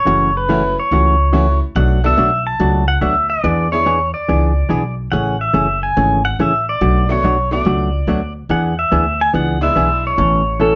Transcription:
Already playing: C#5
0.05 F#1 C#3 E3 A3 C#4 F#4
0.37 B4
0.49 C#3 E3 A3 C#4 E4 F#4
0.80 C#5
0.91 C#2 C#3 E3 A3 C#4 F#4
1.33 C#3 E3 A3 C#4 E4 F#4
1.75 B1 B2 F#3 A3 D4 F#4 F#5
2.04 B3 D4 F#4 A4 E5
2.17 B1 B2 F#3 A3 D4 F#4
2.47 A5
2.60 C#2 B2 F#3 A3 D4 F#4
2.88 F#5
3.01 D2 B2 F#3 A3 D4 F#4 E5
3.30 D5
3.44 E2 E3 B3 D4 G#4
3.72 B3 D4 E4 G#4 C#5
3.86 E3 B3 D4 G#4
4.14 D5
4.28 C#2 E3 B3 D4 G#4
4.69 B1 E3 B3 D4 G#4
5.12 A1 C#3 E3 A3 C#4 G#4 F#5
5.41 E5
5.54 F#1 C#3 E3 A3 C#4 G#4
5.83 G#5
5.97 G#1 C#3 E3 A3 C#4 G#4
6.25 F#5
6.39 A1 C#3 E3 A3 C#4 G#4 E5
6.69 D5
6.81 B1 B2 F#3 A3 D4 F#4
7.09 A3 B3 D4 F#4 C#5
7.23 B1 B2 F#3 A3 D4 F#4
7.51 A3 B3 D4 F#4 D5
7.65 C#2 B2 F#3 A3 D4 F#4
8.07 D2 B2 F#3 A3 D4 F#4
8.49 E2 E3 B3 D4 G#4 F#5
8.79 E5
8.92 D2 E3 B3 D4 G#4
9.21 G#5
9.34 C#2 E3 B3 D4 G#4 F#5
9.61 G#3 B3 D4 E4 E5
9.76 B1 E3 B3 D4 G#4
10.07 C#5
10.18 A1 B2 E3 A3 C#4 A4
10.60 B2 E3 A3 C#4 A4

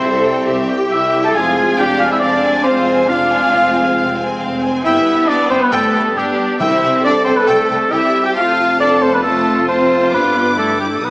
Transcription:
Already playing: G3 C4 E4 C5
0.02 C2 A4 E5
0.25 G5
0.47 C2 G4 E5
0.69 G5
0.90 C2 E4 E5
0.95 G3
1.12 G5
1.24 A4 A5
1.34 F1 C4 F4 G#4 F5 G#5
1.38 G#3
1.56 G#5
1.77 F1 D4 G4 F5 G5
1.99 F4 F5 G#5
2.12 E4 E5
2.20 F1 C4 D4 D5 F5
2.44 G#5
2.64 F1 C4 F4 C5 F5
2.68 G#3 C4
2.88 G#5
3.08 F1 G#3 C4 D4 F4 F5
3.32 G#5
3.53 F1 C4 F5
3.74 G#5
3.96 F1 C4 F5
4.20 G#5
4.41 F1 F5
4.62 G#5
4.84 G1 G3 B3 E4 E5 G5
5.06 G1 G5
5.28 G3 B3 D4 D5
5.50 G1 C4 C5 G5
5.62 B3 B4
5.72 G1 A3 A4 G5
5.94 G1 G5
6.16 G1 G3 B3 D4 G4 G5
6.60 C2 C3 G3 C4 E4 E5 G5
6.83 C2 G5
7.04 D4 A4 D5
7.24 C2 C4 C5 G5
7.36 B3 B4
7.47 C2 A3 A4 G5
7.69 C2 G5
7.92 C2 G3 C4 E4 G4 E5 G5
8.26 G4 G5
8.36 F1 A3 C4 F4 F5 A5
8.80 D4 A4 D5
9.03 C4 C5
9.14 B3 B4
9.23 A3 C4 F4 A4 A5
9.68 A3 C4 C5 A5
10.12 G1 G3 B3 D4 B4 D6
10.57 A3 E4 A4
10.79 G3 G4
10.90 A3 A4
11.02 B1 A3 B3 D#4 B4 D#6

